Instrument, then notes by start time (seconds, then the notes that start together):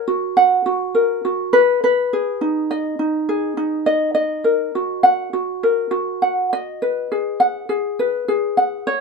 ukulele
Already playing: A#4 C#5 F#5
0.08 F#4
0.37 F#5
0.66 F#4
0.95 A#4
1.25 F#4
1.53 B4
1.84 B4
2.13 G#4
2.41 D#4
2.71 D#5
2.99 D#4
3.29 G#4
3.57 D#4
3.86 D#5
4.15 D#5
4.44 A#4
4.75 F#4
5.03 F#5
5.33 F#4
5.63 A#4
5.91 F#4
6.22 F#5
6.53 D#5
6.82 B4
7.12 G#4
7.40 F#5
7.69 G#4
7.99 B4
8.28 G#4
8.57 F#5
8.87 C#5